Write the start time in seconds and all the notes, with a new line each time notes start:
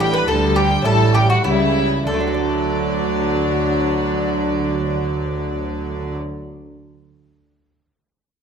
Already playing: A1 A2 G3 D4 E4
0.00 G4 G5
0.12 B4
0.17 B5
0.27 D2 D3 G3 A4 A5
0.56 G4 G5
0.82 A1 A2 G3 C#4 E4 A4 A5
1.13 G4 G5
1.30 F#4 F#5
1.44 C#2 C#3 G3 E4 E5
2.06 D2 D3 F#3 D4 A4 D5
2.14 A3
2.20 D4
2.27 F#4
2.34 D5